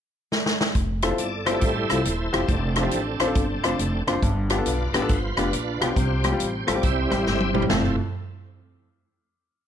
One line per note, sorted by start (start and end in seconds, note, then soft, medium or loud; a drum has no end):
0.32 snare medium
0.46 snare medium
0.61 snare medium
0.75 1.12 F1 medium
0.75 kick medium
0.75 closed hi-hat medium
1.02 1.09 C4 medium
1.02 1.09 E4 medium
1.02 1.09 F4 medium
1.02 1.09 A4 medium
1.02 cross-stick loud
1.02 closed hi-hat medium
1.11 1.25 C4 medium
1.11 1.25 E4 medium
1.11 1.25 F4 medium
1.11 1.25 A4 medium
1.18 1.56 G1 medium
1.18 1.61 A4 medium
1.18 1.63 D5 medium
1.18 closed hi-hat medium
1.45 2.02 G3 medium
1.45 2.02 A3 soft
1.45 1.52 C4 medium
1.45 1.52 E4 medium
1.45 1.60 E4 medium
1.45 1.52 F4 medium
1.45 1.52 C5 medium
1.45 cross-stick loud
1.45 closed hi-hat medium
1.54 1.68 C4 medium
1.54 1.68 E4 medium
1.54 1.68 F4 medium
1.54 1.68 A4 medium
1.61 1.86 A1 medium
1.61 2.44 E4 medium
1.61 2.45 A4 medium
1.61 2.51 C5 medium
1.61 kick medium
1.61 closed hi-hat medium
1.90 2.03 C2 medium
1.90 2.01 C4 medium
1.90 2.01 E4 medium
1.90 2.01 F4 medium
1.90 2.01 A4 medium
1.90 cross-stick medium
1.90 closed hi-hat medium
2.05 2.29 D#1 medium
2.05 closed hi-hat medium
2.33 2.47 E1 medium
2.33 2.44 C4 medium
2.33 2.44 E4 medium
2.33 2.44 F4 medium
2.33 2.44 G4 medium
2.33 cross-stick loud
2.33 closed hi-hat medium
2.46 2.86 F1 loud
2.46 2.76 C4 medium
2.46 2.76 D4 medium
2.46 2.74 A4 medium
2.46 kick loud
2.46 closed hi-hat medium
2.75 3.01 F3 soft
2.75 2.82 C4 medium
2.75 4.03 C4 soft
2.75 2.82 D4 medium
2.75 4.03 D4 soft
2.75 3.03 E4 soft
2.75 2.82 F4 soft
2.75 4.02 A4 medium
2.75 2.82 A4 medium
2.75 cross-stick loud
2.75 closed hi-hat medium
2.84 2.98 C4 medium
2.84 2.98 D4 medium
2.84 2.98 F4 medium
2.84 2.98 G4 medium
2.91 3.16 A1 medium
2.91 closed hi-hat medium
3.20 3.33 A#1 medium
3.20 3.26 C4 medium
3.20 3.26 D4 medium
3.20 3.26 F4 medium
3.20 3.26 C5 medium
3.20 cross-stick loud
3.20 closed hi-hat medium
3.27 3.42 C4 medium
3.27 3.42 D4 medium
3.27 3.42 F4 medium
3.27 3.42 A4 medium
3.35 3.59 G1 medium
3.35 kick medium
3.35 closed hi-hat medium
3.63 3.77 F1 medium
3.63 3.75 C4 medium
3.63 3.75 D4 medium
3.63 3.75 F4 medium
3.63 3.75 C5 medium
3.63 cross-stick medium
3.63 closed hi-hat medium
3.79 4.03 F1 medium
3.79 closed hi-hat medium
4.07 4.20 F#1 medium
4.07 4.18 C4 medium
4.07 4.18 D4 medium
4.07 4.18 F4 medium
4.07 4.18 C5 medium
4.07 cross-stick loud
4.07 closed hi-hat medium
4.23 4.59 G1 medium
4.23 4.90 G2 medium
4.23 kick medium
4.23 closed hi-hat medium
4.50 4.56 B3 medium
4.50 4.56 D4 medium
4.50 4.56 F4 medium
4.50 4.56 G4 medium
4.50 cross-stick loud
4.50 closed hi-hat medium
4.58 4.72 B3 medium
4.58 4.72 D4 medium
4.58 4.72 F4 medium
4.58 4.72 A4 medium
4.66 4.90 B1 medium
4.66 4.94 F4 medium
4.66 5.38 B4 medium
4.66 5.07 D5 medium
4.66 closed hi-hat medium
4.93 5.07 A1 medium
4.93 5.19 A3 soft
4.93 5.19 B3 soft
4.93 5.00 B3 medium
4.93 5.00 D4 medium
4.93 5.00 F4 medium
4.93 5.09 F4 medium
4.93 5.00 G4 medium
4.93 cross-stick loud
4.93 closed hi-hat medium
5.02 5.16 B3 medium
5.02 5.16 D4 medium
5.02 5.16 F4 medium
5.02 5.16 A4 medium
5.09 5.33 G1 medium
5.09 5.38 F4 medium
5.09 5.39 C5 medium
5.09 kick medium
5.09 closed hi-hat medium
5.37 5.51 F1 medium
5.37 5.49 B3 medium
5.37 5.49 D4 medium
5.37 5.93 D4 medium
5.37 5.49 F4 medium
5.37 5.80 F4 medium
5.37 5.49 G4 medium
5.37 5.83 B4 medium
5.37 cross-stick medium
5.37 closed hi-hat medium
5.53 5.77 A#1 medium
5.53 closed hi-hat medium
5.81 5.94 B1 medium
5.81 5.92 B3 medium
5.81 5.92 D4 medium
5.81 5.92 F4 medium
5.81 5.96 F4 medium
5.81 5.92 G4 medium
5.81 6.64 G4 medium
5.81 6.71 C5 medium
5.81 cross-stick loud
5.81 closed hi-hat medium
5.96 6.33 C2 medium
5.96 6.64 C3 medium
5.96 6.29 G3 soft
5.96 6.29 C4 soft
5.96 6.29 F4 medium
5.96 kick medium
5.96 closed hi-hat medium
6.24 6.30 G3 medium
6.24 6.30 C4 soft
6.24 6.30 F4 soft
6.24 6.30 G4 medium
6.24 cross-stick medium
6.24 closed hi-hat medium
6.32 6.46 G3 medium
6.32 6.46 C4 medium
6.32 6.46 F4 medium
6.32 6.46 G4 medium
6.40 6.64 A1 medium
6.40 closed hi-hat medium
6.67 6.81 A#1 medium
6.67 6.73 G3 medium
6.67 6.73 C4 medium
6.67 6.73 F4 medium
6.67 6.73 A4 medium
6.67 6.83 D5 medium
6.67 cross-stick loud
6.67 closed hi-hat medium
6.75 6.83 G3 medium
6.75 6.83 C4 medium
6.75 6.83 F4 medium
6.75 6.83 G4 medium
6.82 7.07 C2 medium
6.82 7.50 C3 medium
6.82 7.50 G3 soft
6.82 7.51 C4 soft
6.82 7.51 E4 soft
6.82 7.66 G4 medium
6.82 7.66 C5 medium
6.82 7.51 E5 medium
6.82 kick medium
6.82 closed hi-hat medium
7.11 7.24 A1 medium
7.11 7.22 G3 medium
7.11 7.22 C4 medium
7.11 7.22 E4 medium
7.11 7.22 G4 medium
7.11 cross-stick medium
7.11 closed hi-hat medium
7.26 7.63 G1 medium
7.26 snare soft
7.40 high tom medium
7.54 7.65 G3 medium
7.54 7.65 C4 medium
7.54 7.65 E4 medium
7.54 7.65 G4 medium
7.54 mid tom medium
7.62 floor tom medium
7.69 7.96 F1 medium
7.69 7.96 F2 medium
7.69 7.96 F3 medium
7.69 7.96 A3 medium
7.69 7.96 C4 medium
7.69 7.96 E4 medium
7.69 7.95 F4 medium
7.69 7.96 A4 medium
7.69 snare medium
7.69 floor tom medium